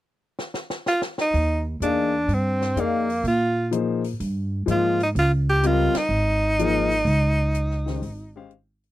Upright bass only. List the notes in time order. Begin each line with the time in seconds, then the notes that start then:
1.34 D#2
1.80 E2
2.28 G2
2.76 F2
3.23 A#2
4.20 G2
4.67 G#2
5.15 C#2
5.94 muted upright bass stroke
6.09 G#1
7.05 C#2
8.02 G#1